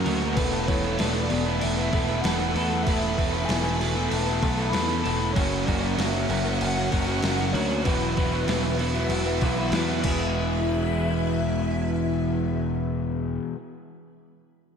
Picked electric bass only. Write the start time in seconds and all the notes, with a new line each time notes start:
0.06 D2
0.37 E1
0.68 E1
1.01 E1
1.32 E1
1.63 E1
1.93 E1
2.25 E1
2.55 E2
2.87 E1
3.49 E1
4.12 E1
4.43 B1
4.73 E2
5.05 E1
5.36 F#1
5.67 F#1
5.98 F#1
6.29 F#1
6.61 F#1
6.92 F#1
7.23 F#1
7.54 D2
7.86 E1
8.47 E1
9.09 E1
9.42 B1
9.72 E2
10.05 E1